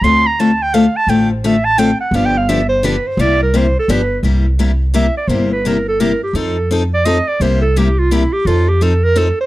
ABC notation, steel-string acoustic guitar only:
X:1
M:3/4
L:1/16
Q:"Swing" 1/4=171
K:Cmix
V:1 name="Steel-string acoustic guitar"
[D,A,CFA]2 z2 [D,A,CFA] z3 [D,A,CFA] z3 | [D,A,CFA]2 z2 [D,A,CFA] z3 [D,A,CFA] z3 | [D,F,=B,DG]2 z2 [D,F,B,DG] z3 [D,F,B,DG] z3 | [C,G,B,EG]2 z2 [C,G,B,EG] z3 [D,F,=B,DG] z3 |
[C,G,B,EG]2 z2 [C,G,B,EG] z3 [C,G,B,EG] z3 | [C,G,B,EG]2 z2 [C,G,B,EG] z3 [C,G,B,EG] z3 | [F,C_EA]2 z2 [F,CEA] z3 [F,CEA] z3 | [C,G,B,EG]2 z2 [C,G,B,EG] z3 [C,G,B,EG] z3 |
[F,C_EA]2 z2 [F,CEA] z3 [F,CEA] z3 |]